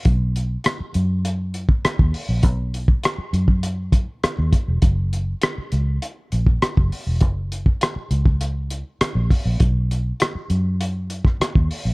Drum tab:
HH |x-x-x-x-x-x-x-o-|x-x-x-x-x-x-x-x-|x-x-x-x-x-x-x-o-|x-x-x-x-x-x-x-o-|
SD |----r-------r---|----r-------r---|----r-------r---|----r-------r---|
BD |o----------o-o--|o--o---o--o---o-|o----------o-o--|o--o---o------o-|

HH |x-x-x-x-x-x-x-o-|
SD |----r------rr---|
BD |o----------o-o--|